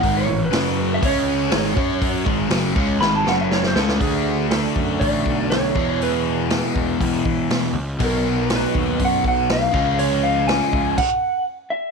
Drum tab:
CC |----------------|----------------|----------------|----------------|
HH |o---o---o---o---|o---o-----------|o---o---o---o---|o---o---o---o---|
SD |----o-------o---|----o---o-o-oooo|----o-------o---|----o-------o---|
BD |o-------o-----o-|o-o---o---------|o-----o-o-o---o-|------o-o-o-----|

CC |----------------|--------x-------|
HH |o---o---o---o---|o---o-----------|
SD |----o-------o---|----o-----------|
BD |o-----o-o-o---o-|------o-o-------|